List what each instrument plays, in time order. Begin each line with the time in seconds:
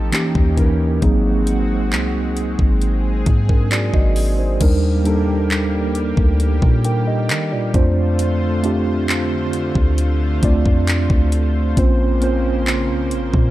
Already playing: 808-style bass A1
0.12 tine electric piano E3 A#3 C#4 D#4 G4, analog synth pad E3 C#4 D#4 G4, clap, closed hi-hat
0.35 808-style bass D#2, kick
0.57 tine electric piano E3 A#3 C#4 D#4 A#4, kick, closed hi-hat
1.01 808-style bass G#1, tine electric piano F#3 A#3 C4 D#4 G#4, analog synth pad G#3 C4 F#4, kick, closed hi-hat
1.47 closed hi-hat
1.93 808-style bass C2, clap
2.37 closed hi-hat
2.59 808-style bass G#1, kick
2.82 analog synth pad G#4, closed hi-hat
3.26 808-style bass G#2, kick, closed hi-hat
3.49 tine electric piano D4 A#4, kick
3.71 tine electric piano F#4 D5, clap, closed hi-hat
3.94 808-style bass G#1, tine electric piano F#4 D#5, kick
4.16 open hi-hat
4.39 tine electric piano D#4 C5
4.60 808-style bass D#2, tine electric piano G3 A#3 D4 D#4 A#4, analog synth pad G3 A#3 G4, kick, closed hi-hat, crash
5.05 tine electric piano G3 A#3 D4 D#4 A4, closed hi-hat
5.51 clap
5.95 closed hi-hat
6.17 808-style bass D2, kick
6.40 closed hi-hat
6.62 808-style bass A#2, kick
6.84 tine electric piano A#4 G5, closed hi-hat
7.07 tine electric piano G4 D#5
7.29 808-style bass D#3, clap, closed hi-hat
7.52 808-style bass A#2, tine electric piano F4 D5
7.74 808-style bass F2, analog synth pad D3 A3 F4 C5, tine electric piano A3 C4 D4 F4 C5, kick, closed hi-hat
8.19 closed hi-hat
8.63 tine electric piano A3 C4 D4 F4 G4, closed hi-hat
9.09 clap
9.53 closed hi-hat
9.75 808-style bass D2, kick
9.98 closed hi-hat
10.42 808-style bass D2, tine electric piano A3 C4 D4 F4 D5, kick, closed hi-hat
10.66 808-style bass F2, kick
10.88 clap, closed hi-hat
11.10 808-style bass D2, kick
11.32 closed hi-hat
11.76 808-style bass A#1, analog synth pad C#3 A#3, tine electric piano A#3 C4 C#4 F4 C5, kick, closed hi-hat
12.21 tine electric piano A#3 C4 C#4 F4 C5, closed hi-hat
12.67 clap
12.90 808-style bass C2
13.11 808-style bass A#1, closed hi-hat
13.34 808-style bass A#2, kick